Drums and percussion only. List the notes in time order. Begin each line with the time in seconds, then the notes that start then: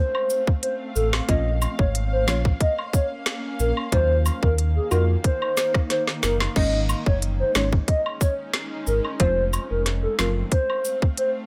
0.15 high woodblock
0.30 cabasa
0.47 kick
0.63 closed hi-hat
0.96 cabasa
1.13 snare, high woodblock
1.29 kick, closed hi-hat
1.62 cabasa, high woodblock
1.79 kick
1.95 closed hi-hat
2.28 snare, cabasa, high woodblock
2.45 kick
2.61 kick, closed hi-hat
2.79 high woodblock
2.93 kick, cabasa
3.26 snare, closed hi-hat
3.60 cabasa
3.77 high woodblock
3.92 kick, closed hi-hat
4.26 cabasa, high woodblock
4.43 kick
4.58 closed hi-hat
4.91 cabasa, high woodblock
5.24 kick, closed hi-hat
5.42 high woodblock
5.57 snare, cabasa
5.74 kick, cross-stick
5.90 snare, closed hi-hat
6.07 snare
6.23 snare, cabasa
6.40 snare, high woodblock
6.56 kick, crash
6.89 cabasa, high woodblock
7.06 kick
7.22 closed hi-hat
7.55 snare, cabasa, high woodblock
7.73 kick
7.88 kick, closed hi-hat
8.06 high woodblock
8.21 kick, cabasa
8.54 snare, closed hi-hat
8.87 cabasa
9.05 high woodblock
9.20 kick, closed hi-hat
9.53 cabasa, high woodblock
9.86 snare, closed hi-hat
10.19 snare, cabasa, high woodblock
10.52 kick, closed hi-hat
10.70 high woodblock
10.85 cabasa
11.02 kick
11.17 closed hi-hat